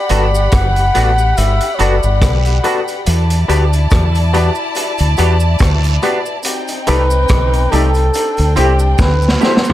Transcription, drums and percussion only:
0.09 closed hi-hat medium
0.09 cabasa medium
0.35 cabasa medium
0.52 kick loud
0.52 cross-stick loud
0.52 closed hi-hat medium
0.52 cabasa medium
0.76 closed hi-hat medium
0.76 cabasa soft
0.95 closed hi-hat medium
0.95 cabasa soft
1.18 cabasa medium
1.37 closed hi-hat medium
1.37 cabasa medium
1.60 closed hi-hat medium
1.60 cabasa soft
1.79 closed hi-hat medium
1.79 cabasa soft
2.03 cabasa medium
2.21 kick loud
2.21 cross-stick loud
2.21 closed hi-hat medium
2.21 cabasa medium
2.21 long guiro medium
2.45 closed hi-hat soft
2.45 cabasa soft
2.64 closed hi-hat medium
2.64 cabasa soft
2.88 closed hi-hat soft
2.88 cabasa medium
3.06 closed hi-hat loud
3.06 cabasa medium
3.30 closed hi-hat medium
3.30 cabasa soft
3.49 closed hi-hat medium
3.49 cabasa medium
3.73 closed hi-hat soft
3.73 cabasa medium
3.91 kick loud
3.91 cross-stick loud
3.91 closed hi-hat medium
3.91 cabasa medium
4.15 closed hi-hat medium
4.15 cabasa soft
4.34 closed hi-hat medium
4.34 cabasa soft
4.55 cabasa medium
4.75 closed hi-hat medium
4.75 cabasa medium
4.98 closed hi-hat medium
4.98 cabasa soft
5.17 closed hi-hat medium
5.17 cabasa soft
5.40 cabasa medium
5.59 kick loud
5.59 cross-stick loud
5.59 closed hi-hat medium
5.59 cabasa medium
5.59 long guiro medium
5.84 closed hi-hat soft
5.84 cabasa soft
6.02 closed hi-hat medium
6.02 cabasa medium
6.26 cabasa medium
6.43 closed hi-hat loud
6.43 cabasa medium
6.68 closed hi-hat medium
6.68 cabasa medium
6.87 closed hi-hat medium
6.87 cabasa medium
7.10 cabasa medium
7.28 kick loud
7.28 cross-stick loud
7.28 closed hi-hat medium
7.28 cabasa medium
7.53 closed hi-hat medium
7.53 cabasa soft
7.72 closed hi-hat medium
7.72 cabasa soft
7.94 closed hi-hat soft
7.94 cabasa medium
8.14 closed hi-hat medium
8.14 cabasa medium
8.37 closed hi-hat medium
8.37 cabasa soft
8.56 closed hi-hat medium
8.56 cabasa soft
8.79 cabasa medium
8.98 kick loud
8.98 snare medium
8.98 cabasa medium
8.98 long guiro medium
9.22 cabasa soft
9.28 snare medium
9.41 snare medium
9.41 cabasa medium
9.57 snare loud
9.65 cabasa medium
9.70 floor tom medium

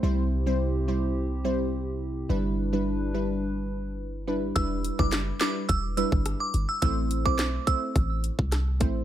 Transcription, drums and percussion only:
4.56 kick loud
4.56 closed hi-hat medium
4.84 closed hi-hat medium
4.99 kick loud
5.12 snare loud
5.12 clap medium
5.12 closed hi-hat medium
5.41 snare loud
5.41 clap loud
5.41 closed hi-hat medium
5.69 kick loud
5.69 closed hi-hat medium
5.97 closed hi-hat medium
6.12 kick loud
6.26 cross-stick medium
6.26 closed hi-hat medium
6.54 closed hi-hat medium
6.82 kick loud
6.82 closed hi-hat medium
7.11 closed hi-hat medium
7.26 kick loud
7.39 snare loud
7.39 clap medium
7.39 closed hi-hat medium
7.67 kick loud
7.67 closed hi-hat medium
7.96 kick loud
7.96 closed hi-hat medium
8.24 closed hi-hat medium
8.39 kick loud
8.52 cross-stick medium
8.52 snare medium
8.52 closed hi-hat medium
8.81 kick loud
8.81 closed hi-hat medium

